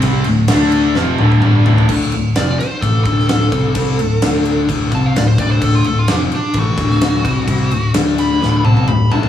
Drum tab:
CC |x-x-x-x---------|x-x-x-x-x-x-x-x-|x-x-x-x-x-x-x-x-|x-x-x-x-x-x-x-x-|
SD |----o---o-------|----o------oo---|----o-------o---|----o------oo---|
T1 |----------oo----|----------------|----------------|----------------|
T2 |------------o---|----------------|----------------|----------------|
FT |--------------oo|----------------|----------------|----------------|
BD |o---------------|o-------o-o---o-|o-------o-o---o-|o-------o-o---o-|

CC |x-x-x-x---------|
SD |----o---o-------|
T1 |----------oo----|
T2 |------------o---|
FT |--------------oo|
BD |o---------------|